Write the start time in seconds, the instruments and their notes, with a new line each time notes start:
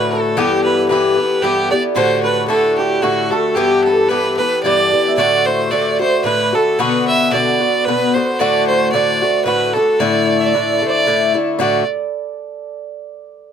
Already playing: bouzouki A2 D3 A3 F#4, fiddle B4, hammered dulcimer B4 D5
0.11 fiddle A4, hammered dulcimer A4
0.37 bouzouki G2 E3 B3 G4, fiddle G4, hammered dulcimer G4
0.64 fiddle B4, hammered dulcimer B4
0.88 bouzouki G2 E3 B3 G4, fiddle B4, hammered dulcimer B4
1.18 bouzouki E3 B3 G4
1.42 bouzouki G2 E3 B3 G4, fiddle G4, hammered dulcimer G4
1.71 bouzouki E3 B3 G4, hammered dulcimer D5, fiddle D5
1.95 bouzouki A2 D3 A3 F#4, fiddle C5, hammered dulcimer C5
2.23 fiddle B4, hammered dulcimer B4
2.48 bouzouki A2 D3 A3 F#4, fiddle A4, hammered dulcimer A4
2.78 fiddle G4, hammered dulcimer G4
3.02 bouzouki A2 D3 A3 F#4, fiddle F#4, hammered dulcimer F#4
3.31 bouzouki D3 A3 F#4, fiddle A4, hammered dulcimer A4
3.55 bouzouki G2 E3 B3 G4, fiddle G4, hammered dulcimer G4
3.84 fiddle A4, hammered dulcimer A4
4.08 bouzouki G2 E3 B3 G4, fiddle B4
4.13 hammered dulcimer B4
4.37 bouzouki E3 B3 G4, fiddle B4, hammered dulcimer B4
4.63 bouzouki G2 E3 B3 G4, fiddle D5, hammered dulcimer D5
4.92 bouzouki E3 B3 G4
5.08 hammered dulcimer E5
5.17 bouzouki A2 D3 A3 F#4, fiddle D5, hammered dulcimer D5
5.46 fiddle C5, hammered dulcimer C5
5.71 bouzouki A2 D3 A3 F#4, fiddle D5, hammered dulcimer D5
5.99 bouzouki D3 A3 F#4, fiddle C5, hammered dulcimer C5
6.24 bouzouki A2 D3 A3 F#4, fiddle B4, hammered dulcimer B4
6.52 bouzouki D3 A3 F#4, hammered dulcimer A4, fiddle A4
6.79 bouzouki B2 D3 B3 F#4, fiddle B4, hammered dulcimer B4
7.07 fiddle E5
7.31 bouzouki B2 D3 B3 F#4, fiddle D5, hammered dulcimer D5
7.60 bouzouki D3 B3 F#4
7.85 bouzouki B2 D3 B3, fiddle B4, hammered dulcimer B4
7.89 bouzouki F#4
8.14 bouzouki D3 B3 F#4, fiddle C5, hammered dulcimer C5
8.39 bouzouki A2 D3 A3 F#4, fiddle D5, hammered dulcimer D5
8.67 fiddle C5, hammered dulcimer C5
8.92 bouzouki A2 D3 A3 F#4, fiddle D5, hammered dulcimer D5
9.21 bouzouki D3 A3 F#4
9.45 bouzouki A2 D3 A3 F#4, fiddle B4, hammered dulcimer B4
9.73 bouzouki D3 A3 F#4, fiddle A4, hammered dulcimer A4
9.99 bouzouki A2 D3 A3 E4, fiddle D5, hammered dulcimer D5
10.40 fiddle D5 E5
10.46 hammered dulcimer D5
10.54 bouzouki A2 D3 A3 E4
10.81 bouzouki D3 A3 E4
10.86 fiddle C5 D5, hammered dulcimer D5
11.06 bouzouki A2 D3 A3 E4
11.34 bouzouki D3 A3 E4
11.58 bouzouki A2 D3 A3 F#4, hammered dulcimer D5, fiddle D5